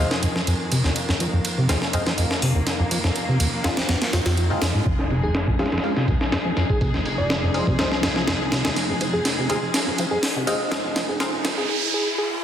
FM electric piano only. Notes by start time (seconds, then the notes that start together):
5.23 G#4
5.59 G#4
6.70 G#4
6.81 G#4
7.18 D5
9.13 G#4
9.49 G#4
10.11 G#4
10.47 G#4
11.09 G#4
11.58 G#4
11.69 G#4
11.94 G#4
12.18 G#4